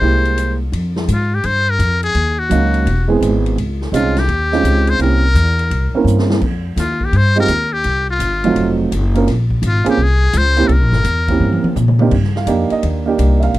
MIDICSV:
0, 0, Header, 1, 6, 480
1, 0, Start_track
1, 0, Key_signature, -4, "minor"
1, 0, Tempo, 356295
1, 973, Time_signature, 4, 2, 24, 8
1, 18306, End_track
2, 0, Start_track
2, 0, Title_t, "Muted trumpet"
2, 0, Program_c, 0, 59
2, 0, Note_on_c, 0, 72, 84
2, 748, Note_off_c, 0, 72, 0
2, 1525, Note_on_c, 0, 65, 85
2, 1812, Note_on_c, 0, 67, 84
2, 1832, Note_off_c, 0, 65, 0
2, 1958, Note_on_c, 0, 72, 98
2, 1978, Note_off_c, 0, 67, 0
2, 2290, Note_on_c, 0, 70, 99
2, 2310, Note_off_c, 0, 72, 0
2, 2734, Note_off_c, 0, 70, 0
2, 2742, Note_on_c, 0, 68, 95
2, 3216, Note_on_c, 0, 66, 80
2, 3236, Note_off_c, 0, 68, 0
2, 4169, Note_off_c, 0, 66, 0
2, 5324, Note_on_c, 0, 65, 85
2, 5647, Note_on_c, 0, 67, 96
2, 5667, Note_off_c, 0, 65, 0
2, 6596, Note_on_c, 0, 72, 95
2, 6616, Note_off_c, 0, 67, 0
2, 6746, Note_off_c, 0, 72, 0
2, 6760, Note_on_c, 0, 70, 95
2, 8130, Note_off_c, 0, 70, 0
2, 9155, Note_on_c, 0, 65, 86
2, 9498, Note_on_c, 0, 67, 85
2, 9518, Note_off_c, 0, 65, 0
2, 9659, Note_on_c, 0, 72, 100
2, 9679, Note_off_c, 0, 67, 0
2, 9946, Note_off_c, 0, 72, 0
2, 9968, Note_on_c, 0, 70, 97
2, 10410, Note_on_c, 0, 67, 90
2, 10430, Note_off_c, 0, 70, 0
2, 10884, Note_off_c, 0, 67, 0
2, 10920, Note_on_c, 0, 65, 82
2, 11805, Note_off_c, 0, 65, 0
2, 13034, Note_on_c, 0, 65, 88
2, 13293, Note_off_c, 0, 65, 0
2, 13335, Note_on_c, 0, 67, 86
2, 13515, Note_on_c, 0, 68, 99
2, 13535, Note_off_c, 0, 67, 0
2, 13977, Note_on_c, 0, 72, 102
2, 13998, Note_off_c, 0, 68, 0
2, 14379, Note_on_c, 0, 69, 66
2, 14400, Note_off_c, 0, 72, 0
2, 14445, Note_on_c, 0, 70, 90
2, 14466, Note_off_c, 0, 69, 0
2, 15867, Note_off_c, 0, 70, 0
2, 18306, End_track
3, 0, Start_track
3, 0, Title_t, "Upright piano"
3, 0, Program_c, 1, 0
3, 12, Note_on_c, 1, 56, 55
3, 19, Note_on_c, 1, 58, 54
3, 30, Note_on_c, 1, 64, 54
3, 35, Note_on_c, 1, 67, 63
3, 742, Note_off_c, 1, 56, 0
3, 746, Note_off_c, 1, 58, 0
3, 751, Note_off_c, 1, 64, 0
3, 754, Note_off_c, 1, 67, 0
3, 3359, Note_on_c, 1, 54, 59
3, 3372, Note_on_c, 1, 58, 57
3, 3374, Note_on_c, 1, 61, 53
3, 3382, Note_on_c, 1, 63, 58
3, 3388, Note_on_c, 1, 77, 70
3, 3845, Note_off_c, 1, 54, 0
3, 3851, Note_off_c, 1, 58, 0
3, 3852, Note_off_c, 1, 61, 0
3, 3856, Note_off_c, 1, 63, 0
3, 3859, Note_off_c, 1, 77, 0
3, 4149, Note_on_c, 1, 56, 70
3, 4156, Note_on_c, 1, 59, 65
3, 4163, Note_on_c, 1, 64, 65
3, 4166, Note_on_c, 1, 60, 68
3, 4171, Note_on_c, 1, 68, 78
3, 4770, Note_off_c, 1, 56, 0
3, 4773, Note_off_c, 1, 59, 0
3, 4776, Note_off_c, 1, 64, 0
3, 4778, Note_off_c, 1, 60, 0
3, 4780, Note_off_c, 1, 68, 0
3, 5290, Note_on_c, 1, 56, 65
3, 5295, Note_on_c, 1, 61, 62
3, 5299, Note_on_c, 1, 60, 62
3, 5306, Note_on_c, 1, 63, 62
3, 5310, Note_on_c, 1, 65, 74
3, 5571, Note_off_c, 1, 56, 0
3, 5573, Note_off_c, 1, 61, 0
3, 5575, Note_off_c, 1, 60, 0
3, 5579, Note_off_c, 1, 63, 0
3, 5581, Note_off_c, 1, 65, 0
3, 6091, Note_on_c, 1, 56, 63
3, 6097, Note_on_c, 1, 60, 62
3, 6102, Note_on_c, 1, 61, 58
3, 6104, Note_on_c, 1, 63, 59
3, 6107, Note_on_c, 1, 65, 73
3, 6700, Note_off_c, 1, 56, 0
3, 6703, Note_off_c, 1, 60, 0
3, 6705, Note_off_c, 1, 61, 0
3, 6706, Note_off_c, 1, 63, 0
3, 6708, Note_off_c, 1, 65, 0
3, 6733, Note_on_c, 1, 58, 54
3, 6747, Note_on_c, 1, 60, 50
3, 6747, Note_on_c, 1, 64, 49
3, 6749, Note_on_c, 1, 61, 50
3, 6761, Note_on_c, 1, 67, 60
3, 7012, Note_off_c, 1, 58, 0
3, 7019, Note_off_c, 1, 60, 0
3, 7019, Note_off_c, 1, 64, 0
3, 7020, Note_off_c, 1, 61, 0
3, 7026, Note_off_c, 1, 67, 0
3, 8010, Note_on_c, 1, 60, 61
3, 8013, Note_on_c, 1, 58, 66
3, 8017, Note_on_c, 1, 61, 62
3, 8034, Note_on_c, 1, 64, 61
3, 8034, Note_on_c, 1, 70, 75
3, 8619, Note_off_c, 1, 60, 0
3, 8620, Note_off_c, 1, 58, 0
3, 8622, Note_off_c, 1, 61, 0
3, 8631, Note_off_c, 1, 64, 0
3, 8631, Note_off_c, 1, 70, 0
3, 9913, Note_on_c, 1, 56, 70
3, 9925, Note_on_c, 1, 60, 65
3, 9926, Note_on_c, 1, 63, 66
3, 9930, Note_on_c, 1, 65, 64
3, 9940, Note_on_c, 1, 67, 79
3, 10067, Note_off_c, 1, 56, 0
3, 10073, Note_off_c, 1, 60, 0
3, 10073, Note_off_c, 1, 63, 0
3, 10075, Note_off_c, 1, 65, 0
3, 10080, Note_off_c, 1, 67, 0
3, 11370, Note_on_c, 1, 57, 76
3, 11380, Note_on_c, 1, 63, 64
3, 11381, Note_on_c, 1, 60, 64
3, 11387, Note_on_c, 1, 65, 69
3, 11397, Note_on_c, 1, 54, 76
3, 11978, Note_off_c, 1, 57, 0
3, 11983, Note_off_c, 1, 63, 0
3, 11984, Note_off_c, 1, 60, 0
3, 11987, Note_off_c, 1, 65, 0
3, 11992, Note_off_c, 1, 54, 0
3, 12321, Note_on_c, 1, 58, 64
3, 12327, Note_on_c, 1, 60, 57
3, 12332, Note_on_c, 1, 61, 59
3, 12339, Note_on_c, 1, 65, 56
3, 12351, Note_on_c, 1, 70, 69
3, 12471, Note_off_c, 1, 58, 0
3, 12474, Note_off_c, 1, 60, 0
3, 12476, Note_off_c, 1, 61, 0
3, 12479, Note_off_c, 1, 65, 0
3, 12486, Note_off_c, 1, 70, 0
3, 13261, Note_on_c, 1, 58, 72
3, 13267, Note_on_c, 1, 60, 69
3, 13277, Note_on_c, 1, 61, 68
3, 13283, Note_on_c, 1, 65, 65
3, 13287, Note_on_c, 1, 68, 84
3, 13421, Note_off_c, 1, 58, 0
3, 13424, Note_off_c, 1, 60, 0
3, 13428, Note_off_c, 1, 61, 0
3, 13432, Note_off_c, 1, 65, 0
3, 13434, Note_off_c, 1, 68, 0
3, 14239, Note_on_c, 1, 58, 69
3, 14243, Note_on_c, 1, 60, 65
3, 14248, Note_on_c, 1, 64, 67
3, 14250, Note_on_c, 1, 61, 62
3, 14259, Note_on_c, 1, 67, 78
3, 14390, Note_off_c, 1, 58, 0
3, 14392, Note_off_c, 1, 60, 0
3, 14394, Note_off_c, 1, 64, 0
3, 14395, Note_off_c, 1, 61, 0
3, 14400, Note_off_c, 1, 67, 0
3, 15204, Note_on_c, 1, 58, 61
3, 15215, Note_on_c, 1, 60, 52
3, 15219, Note_on_c, 1, 61, 52
3, 15228, Note_on_c, 1, 64, 52
3, 15229, Note_on_c, 1, 67, 61
3, 15816, Note_off_c, 1, 58, 0
3, 15822, Note_off_c, 1, 60, 0
3, 15824, Note_off_c, 1, 61, 0
3, 15828, Note_off_c, 1, 64, 0
3, 15829, Note_off_c, 1, 67, 0
3, 16172, Note_on_c, 1, 58, 71
3, 16179, Note_on_c, 1, 60, 64
3, 16180, Note_on_c, 1, 62, 61
3, 16186, Note_on_c, 1, 63, 64
3, 16191, Note_on_c, 1, 67, 76
3, 16317, Note_off_c, 1, 58, 0
3, 16320, Note_off_c, 1, 60, 0
3, 16321, Note_off_c, 1, 62, 0
3, 16324, Note_off_c, 1, 63, 0
3, 16327, Note_off_c, 1, 67, 0
3, 16665, Note_on_c, 1, 77, 81
3, 16796, Note_on_c, 1, 58, 71
3, 16799, Note_on_c, 1, 62, 61
3, 16811, Note_on_c, 1, 67, 76
3, 16813, Note_on_c, 1, 63, 61
3, 17100, Note_off_c, 1, 77, 0
3, 17138, Note_on_c, 1, 75, 79
3, 17292, Note_off_c, 1, 75, 0
3, 17533, Note_off_c, 1, 58, 0
3, 17535, Note_off_c, 1, 62, 0
3, 17541, Note_off_c, 1, 67, 0
3, 17542, Note_off_c, 1, 63, 0
3, 17593, Note_on_c, 1, 58, 74
3, 17600, Note_on_c, 1, 62, 65
3, 17609, Note_on_c, 1, 63, 60
3, 17618, Note_on_c, 1, 67, 81
3, 18050, Note_on_c, 1, 76, 62
3, 18072, Note_off_c, 1, 76, 0
3, 18099, Note_on_c, 1, 77, 88
3, 18212, Note_off_c, 1, 58, 0
3, 18216, Note_off_c, 1, 62, 0
3, 18220, Note_off_c, 1, 63, 0
3, 18225, Note_off_c, 1, 67, 0
3, 18306, Note_off_c, 1, 77, 0
3, 18306, End_track
4, 0, Start_track
4, 0, Title_t, "Upright bass"
4, 0, Program_c, 2, 32
4, 13, Note_on_c, 2, 36, 77
4, 924, Note_off_c, 2, 36, 0
4, 973, Note_on_c, 2, 41, 77
4, 1438, Note_off_c, 2, 41, 0
4, 1455, Note_on_c, 2, 44, 85
4, 1919, Note_off_c, 2, 44, 0
4, 1938, Note_on_c, 2, 43, 79
4, 2400, Note_off_c, 2, 43, 0
4, 2409, Note_on_c, 2, 41, 94
4, 2876, Note_off_c, 2, 41, 0
4, 2891, Note_on_c, 2, 39, 79
4, 3356, Note_off_c, 2, 39, 0
4, 3373, Note_on_c, 2, 37, 85
4, 3837, Note_off_c, 2, 37, 0
4, 3848, Note_on_c, 2, 28, 81
4, 4315, Note_off_c, 2, 28, 0
4, 4321, Note_on_c, 2, 32, 92
4, 4787, Note_off_c, 2, 32, 0
4, 4795, Note_on_c, 2, 37, 78
4, 5268, Note_off_c, 2, 37, 0
4, 5281, Note_on_c, 2, 36, 88
4, 5746, Note_off_c, 2, 36, 0
4, 5754, Note_on_c, 2, 39, 84
4, 6227, Note_off_c, 2, 39, 0
4, 6240, Note_on_c, 2, 37, 87
4, 6709, Note_off_c, 2, 37, 0
4, 6725, Note_on_c, 2, 36, 74
4, 7187, Note_off_c, 2, 36, 0
4, 7195, Note_on_c, 2, 40, 89
4, 7667, Note_off_c, 2, 40, 0
4, 7686, Note_on_c, 2, 36, 76
4, 7977, Note_off_c, 2, 36, 0
4, 8143, Note_on_c, 2, 43, 88
4, 8620, Note_off_c, 2, 43, 0
4, 8646, Note_on_c, 2, 41, 76
4, 9102, Note_off_c, 2, 41, 0
4, 9110, Note_on_c, 2, 39, 88
4, 9584, Note_off_c, 2, 39, 0
4, 9598, Note_on_c, 2, 43, 80
4, 10068, Note_off_c, 2, 43, 0
4, 10076, Note_on_c, 2, 39, 91
4, 10547, Note_off_c, 2, 39, 0
4, 10571, Note_on_c, 2, 36, 81
4, 11028, Note_off_c, 2, 36, 0
4, 11036, Note_on_c, 2, 31, 84
4, 11506, Note_off_c, 2, 31, 0
4, 11530, Note_on_c, 2, 29, 80
4, 11994, Note_off_c, 2, 29, 0
4, 12013, Note_on_c, 2, 30, 95
4, 12475, Note_off_c, 2, 30, 0
4, 12494, Note_on_c, 2, 34, 79
4, 12951, Note_off_c, 2, 34, 0
4, 12959, Note_on_c, 2, 32, 88
4, 13253, Note_off_c, 2, 32, 0
4, 13437, Note_on_c, 2, 36, 83
4, 13907, Note_off_c, 2, 36, 0
4, 13922, Note_on_c, 2, 37, 97
4, 14387, Note_off_c, 2, 37, 0
4, 14395, Note_on_c, 2, 36, 76
4, 14556, Note_off_c, 2, 36, 0
4, 14556, Note_on_c, 2, 34, 59
4, 14701, Note_off_c, 2, 34, 0
4, 14709, Note_on_c, 2, 31, 68
4, 14863, Note_off_c, 2, 31, 0
4, 14871, Note_on_c, 2, 40, 86
4, 15345, Note_off_c, 2, 40, 0
4, 15355, Note_on_c, 2, 43, 82
4, 15651, Note_off_c, 2, 43, 0
4, 15843, Note_on_c, 2, 46, 90
4, 16311, Note_off_c, 2, 46, 0
4, 16325, Note_on_c, 2, 43, 74
4, 16786, Note_off_c, 2, 43, 0
4, 16794, Note_on_c, 2, 41, 84
4, 17092, Note_off_c, 2, 41, 0
4, 17284, Note_on_c, 2, 39, 81
4, 17752, Note_off_c, 2, 39, 0
4, 17761, Note_on_c, 2, 36, 92
4, 18231, Note_off_c, 2, 36, 0
4, 18238, Note_on_c, 2, 34, 75
4, 18306, Note_off_c, 2, 34, 0
4, 18306, End_track
5, 0, Start_track
5, 0, Title_t, "Muted upright bass strokes"
5, 7992, Note_on_c, 9, 29, 39
5, 8127, Note_off_c, 9, 29, 0
5, 13276, Note_on_c, 9, 29, 39
5, 13411, Note_off_c, 9, 29, 0
5, 15673, Note_on_c, 9, 29, 37
5, 15808, Note_off_c, 9, 29, 0
5, 17121, Note_on_c, 9, 29, 35
5, 17255, Note_off_c, 9, 29, 0
5, 18306, End_track
6, 0, Start_track
6, 0, Title_t, "Drums"
6, 341, Note_on_c, 9, 51, 42
6, 476, Note_off_c, 9, 51, 0
6, 507, Note_on_c, 9, 44, 54
6, 507, Note_on_c, 9, 51, 59
6, 641, Note_off_c, 9, 44, 0
6, 641, Note_off_c, 9, 51, 0
6, 987, Note_on_c, 9, 51, 61
6, 1122, Note_off_c, 9, 51, 0
6, 1294, Note_on_c, 9, 38, 54
6, 1429, Note_off_c, 9, 38, 0
6, 1462, Note_on_c, 9, 44, 64
6, 1462, Note_on_c, 9, 51, 65
6, 1596, Note_off_c, 9, 44, 0
6, 1596, Note_off_c, 9, 51, 0
6, 1933, Note_on_c, 9, 51, 58
6, 2068, Note_off_c, 9, 51, 0
6, 2419, Note_on_c, 9, 44, 52
6, 2419, Note_on_c, 9, 51, 63
6, 2553, Note_off_c, 9, 44, 0
6, 2553, Note_off_c, 9, 51, 0
6, 2732, Note_on_c, 9, 51, 46
6, 2867, Note_off_c, 9, 51, 0
6, 2891, Note_on_c, 9, 51, 50
6, 3026, Note_off_c, 9, 51, 0
6, 3376, Note_on_c, 9, 44, 61
6, 3376, Note_on_c, 9, 51, 66
6, 3511, Note_off_c, 9, 44, 0
6, 3511, Note_off_c, 9, 51, 0
6, 3689, Note_on_c, 9, 51, 41
6, 3824, Note_off_c, 9, 51, 0
6, 3863, Note_on_c, 9, 51, 60
6, 3998, Note_off_c, 9, 51, 0
6, 4343, Note_on_c, 9, 44, 57
6, 4343, Note_on_c, 9, 51, 66
6, 4478, Note_off_c, 9, 44, 0
6, 4478, Note_off_c, 9, 51, 0
6, 4662, Note_on_c, 9, 51, 48
6, 4797, Note_off_c, 9, 51, 0
6, 4826, Note_on_c, 9, 51, 54
6, 4960, Note_off_c, 9, 51, 0
6, 5136, Note_on_c, 9, 38, 34
6, 5271, Note_off_c, 9, 38, 0
6, 5305, Note_on_c, 9, 44, 57
6, 5305, Note_on_c, 9, 51, 65
6, 5439, Note_off_c, 9, 44, 0
6, 5439, Note_off_c, 9, 51, 0
6, 5610, Note_on_c, 9, 38, 55
6, 5612, Note_on_c, 9, 51, 42
6, 5745, Note_off_c, 9, 38, 0
6, 5746, Note_off_c, 9, 51, 0
6, 5773, Note_on_c, 9, 51, 55
6, 5908, Note_off_c, 9, 51, 0
6, 6090, Note_on_c, 9, 38, 41
6, 6225, Note_off_c, 9, 38, 0
6, 6262, Note_on_c, 9, 44, 62
6, 6262, Note_on_c, 9, 51, 65
6, 6397, Note_off_c, 9, 44, 0
6, 6397, Note_off_c, 9, 51, 0
6, 6563, Note_on_c, 9, 51, 45
6, 6698, Note_off_c, 9, 51, 0
6, 6730, Note_on_c, 9, 51, 57
6, 6865, Note_off_c, 9, 51, 0
6, 7213, Note_on_c, 9, 44, 59
6, 7213, Note_on_c, 9, 51, 66
6, 7348, Note_off_c, 9, 44, 0
6, 7348, Note_off_c, 9, 51, 0
6, 7531, Note_on_c, 9, 51, 44
6, 7665, Note_off_c, 9, 51, 0
6, 7694, Note_on_c, 9, 51, 62
6, 7829, Note_off_c, 9, 51, 0
6, 8178, Note_on_c, 9, 44, 61
6, 8313, Note_off_c, 9, 44, 0
6, 8335, Note_on_c, 9, 38, 57
6, 8469, Note_off_c, 9, 38, 0
6, 8488, Note_on_c, 9, 38, 83
6, 8623, Note_off_c, 9, 38, 0
6, 8642, Note_on_c, 9, 49, 63
6, 8648, Note_on_c, 9, 36, 66
6, 8777, Note_off_c, 9, 49, 0
6, 8782, Note_off_c, 9, 36, 0
6, 9124, Note_on_c, 9, 38, 39
6, 9125, Note_on_c, 9, 44, 59
6, 9125, Note_on_c, 9, 51, 70
6, 9258, Note_off_c, 9, 38, 0
6, 9260, Note_off_c, 9, 44, 0
6, 9260, Note_off_c, 9, 51, 0
6, 9438, Note_on_c, 9, 36, 52
6, 9573, Note_off_c, 9, 36, 0
6, 9606, Note_on_c, 9, 51, 58
6, 9740, Note_off_c, 9, 51, 0
6, 9918, Note_on_c, 9, 51, 46
6, 10053, Note_off_c, 9, 51, 0
6, 10078, Note_on_c, 9, 44, 55
6, 10078, Note_on_c, 9, 51, 67
6, 10213, Note_off_c, 9, 44, 0
6, 10213, Note_off_c, 9, 51, 0
6, 10561, Note_on_c, 9, 51, 59
6, 10696, Note_off_c, 9, 51, 0
6, 11047, Note_on_c, 9, 44, 57
6, 11047, Note_on_c, 9, 51, 69
6, 11182, Note_off_c, 9, 44, 0
6, 11182, Note_off_c, 9, 51, 0
6, 11367, Note_on_c, 9, 51, 45
6, 11502, Note_off_c, 9, 51, 0
6, 11530, Note_on_c, 9, 51, 59
6, 11665, Note_off_c, 9, 51, 0
6, 12017, Note_on_c, 9, 44, 55
6, 12017, Note_on_c, 9, 51, 65
6, 12152, Note_off_c, 9, 44, 0
6, 12152, Note_off_c, 9, 51, 0
6, 12332, Note_on_c, 9, 51, 47
6, 12467, Note_off_c, 9, 51, 0
6, 12496, Note_on_c, 9, 38, 34
6, 12497, Note_on_c, 9, 51, 57
6, 12630, Note_off_c, 9, 38, 0
6, 12632, Note_off_c, 9, 51, 0
6, 12803, Note_on_c, 9, 36, 56
6, 12938, Note_off_c, 9, 36, 0
6, 12968, Note_on_c, 9, 44, 51
6, 12968, Note_on_c, 9, 51, 75
6, 13103, Note_off_c, 9, 44, 0
6, 13103, Note_off_c, 9, 51, 0
6, 13284, Note_on_c, 9, 51, 63
6, 13418, Note_off_c, 9, 51, 0
6, 13920, Note_on_c, 9, 44, 62
6, 13920, Note_on_c, 9, 51, 72
6, 14054, Note_off_c, 9, 44, 0
6, 14054, Note_off_c, 9, 51, 0
6, 14237, Note_on_c, 9, 51, 51
6, 14371, Note_off_c, 9, 51, 0
6, 14402, Note_on_c, 9, 51, 54
6, 14537, Note_off_c, 9, 51, 0
6, 14716, Note_on_c, 9, 38, 45
6, 14850, Note_off_c, 9, 38, 0
6, 14880, Note_on_c, 9, 44, 57
6, 14880, Note_on_c, 9, 51, 67
6, 15015, Note_off_c, 9, 44, 0
6, 15015, Note_off_c, 9, 51, 0
6, 15198, Note_on_c, 9, 36, 59
6, 15200, Note_on_c, 9, 51, 44
6, 15333, Note_off_c, 9, 36, 0
6, 15334, Note_off_c, 9, 51, 0
6, 15363, Note_on_c, 9, 48, 46
6, 15498, Note_off_c, 9, 48, 0
6, 15523, Note_on_c, 9, 48, 52
6, 15658, Note_off_c, 9, 48, 0
6, 15681, Note_on_c, 9, 48, 69
6, 15815, Note_off_c, 9, 48, 0
6, 15843, Note_on_c, 9, 47, 65
6, 15845, Note_on_c, 9, 44, 59
6, 15978, Note_off_c, 9, 47, 0
6, 15980, Note_off_c, 9, 44, 0
6, 16004, Note_on_c, 9, 47, 69
6, 16138, Note_off_c, 9, 47, 0
6, 16153, Note_on_c, 9, 47, 86
6, 16287, Note_off_c, 9, 47, 0
6, 16317, Note_on_c, 9, 49, 67
6, 16325, Note_on_c, 9, 36, 67
6, 16452, Note_off_c, 9, 49, 0
6, 16460, Note_off_c, 9, 36, 0
6, 16485, Note_on_c, 9, 38, 29
6, 16619, Note_off_c, 9, 38, 0
6, 16644, Note_on_c, 9, 38, 44
6, 16779, Note_off_c, 9, 38, 0
6, 16797, Note_on_c, 9, 44, 52
6, 16797, Note_on_c, 9, 51, 71
6, 16931, Note_off_c, 9, 44, 0
6, 16931, Note_off_c, 9, 51, 0
6, 17111, Note_on_c, 9, 51, 39
6, 17246, Note_off_c, 9, 51, 0
6, 17282, Note_on_c, 9, 51, 65
6, 17417, Note_off_c, 9, 51, 0
6, 17767, Note_on_c, 9, 44, 52
6, 17767, Note_on_c, 9, 51, 66
6, 17902, Note_off_c, 9, 44, 0
6, 17902, Note_off_c, 9, 51, 0
6, 18085, Note_on_c, 9, 51, 44
6, 18220, Note_off_c, 9, 51, 0
6, 18245, Note_on_c, 9, 51, 52
6, 18306, Note_off_c, 9, 51, 0
6, 18306, End_track
0, 0, End_of_file